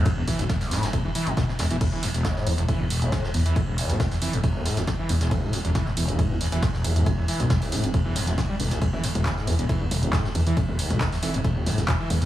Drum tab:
CC |----------------|x---------------|----------------|----------------|
RD |x-x-x-xxx-x-x-x-|x-x-x-xxx-x-x-x-|x-x-x-x-x-x-x-x-|x-x-x-xxx-x-x-x-|
HH |x-oxxooxx-oxx-ox|x-oxx-oxx-oxx-ox|x-oxxooxx-oxx-ox|x-oxx-oxx-oxx-ox|
CP |----------------|----------------|----------------|----------------|
SD |---ooooo----oooo|--o-oo------oo--|---oooo---ooo--o|--o-oo------oo--|
T2 |----------------|----------------|----------------|----------------|
BD |o-o-o---o---o---|o---o---o---o---|o---o---o---o---|o---o---o---o---|

CC |----------------|----------------|----------------|
RD |x-x-x-x-x-x-x-x-|x-x-x-xxx-x-x-x-|x-x-x-x-x-x-x-x-|
HH |x-oxxooxx-oxx-ox|x-oxx-oxx-oxx-ox|x-oxxooxx-oxx-ox|
CP |----------------|----x-------x---|----x-------x---|
SD |---oooo---ooo--o|--o-oo------oo--|---oooo---ooo--o|
T2 |----------------|-o-o------o---o-|-o-o------o---o-|
BD |o---o---o---o---|o---o---o---o---|o---o---o---o---|